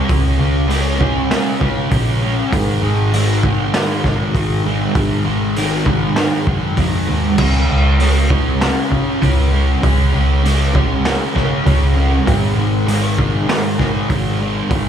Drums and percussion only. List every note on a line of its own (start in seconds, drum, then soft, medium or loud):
0.09 kick loud
0.09 open hi-hat medium
0.70 open hi-hat medium
1.01 kick medium
1.31 snare loud
1.31 open hi-hat medium
1.61 kick medium
1.91 kick medium
1.91 open hi-hat medium
2.53 kick loud
2.53 open hi-hat medium
3.13 open hi-hat medium
3.43 kick medium
3.74 snare loud
3.74 open hi-hat medium
4.04 kick medium
4.04 snare soft
4.35 kick medium
4.35 open hi-hat medium
4.95 kick loud
4.95 open hi-hat medium
5.56 open hi-hat medium
5.86 kick medium
6.16 snare loud
6.16 open hi-hat medium
6.47 kick medium
6.77 kick medium
6.77 open hi-hat medium
7.38 kick loud
7.38 crash loud
8.00 open hi-hat medium
8.30 kick medium
8.61 snare loud
8.61 open hi-hat medium
8.92 kick medium
9.22 kick medium
9.22 open hi-hat medium
9.83 kick loud
9.83 open hi-hat medium
10.45 open hi-hat medium
10.75 kick medium
11.05 snare loud
11.05 open hi-hat medium
11.36 kick medium
11.36 snare soft
11.66 kick medium
11.66 open hi-hat medium
12.27 kick loud
12.27 open hi-hat medium
12.88 open hi-hat medium
13.19 kick medium
13.49 snare loud
13.49 open hi-hat medium
13.79 kick medium
13.79 snare soft
14.10 kick medium
14.10 open hi-hat medium
14.71 kick loud
14.71 open hi-hat medium